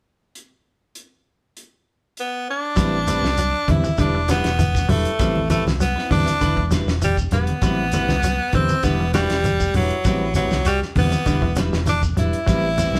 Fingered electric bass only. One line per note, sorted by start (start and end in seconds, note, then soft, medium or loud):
2.77 3.20 A1 medium
3.23 3.51 C2 medium
3.68 3.83 E2 medium
3.98 4.41 E1 medium
4.45 4.86 E1 medium
4.89 5.04 E1 medium
5.19 5.63 A1 medium
5.65 5.94 C2 medium
6.11 6.26 E2 medium
6.41 6.84 E1 medium
6.86 7.28 E1 medium
7.31 7.47 E1 medium
7.62 8.05 A1 medium
8.09 8.37 C2 medium
8.53 8.68 E2 medium
8.83 9.26 E1 medium
9.31 9.72 E1 medium
9.74 9.89 E1 medium
10.05 10.48 A1 medium
10.51 10.79 C2 medium
10.96 11.11 E2 medium
11.26 11.69 E1 medium
11.73 12.14 E1 medium
12.17 12.32 E1 medium
12.48 12.91 A1 medium
12.93 13.00 C2 medium